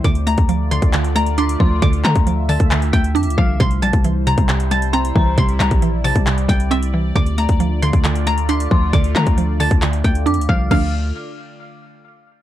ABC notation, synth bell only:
X:1
M:4/4
L:1/8
Q:1/4=135
K:Dm
V:1 name="Synth bell"
z6 d' c' | z6 d' f' | z6 c' b | z8 |
z6 d' c' | z6 d' f' | f' z6 z |]